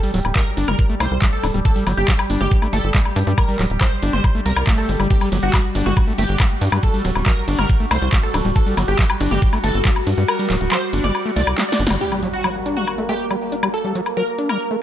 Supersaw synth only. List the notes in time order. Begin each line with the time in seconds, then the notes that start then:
Already playing: A4
0.36 A#4
0.68 A#4
1.00 C5
1.33 A4
1.65 A4
1.97 G4
2.41 G4
2.73 A4
3.38 A#4
3.81 C5
4.13 C5
4.46 A#4
4.78 A4
5.10 G4
5.43 F#4
5.86 F#4
6.18 G4
6.83 A4
7.26 A#4
7.59 A#4
7.91 C5
8.23 A4
8.56 A4
8.88 G4
9.31 G4
9.64 A4
10.28 A#4
10.72 C5
11.04 D5
11.36 D5
11.69 D5
12.01 G4
12.33 F#4
12.77 F#4
13.09 G4
13.74 A4
14.17 A#4
14.49 A#4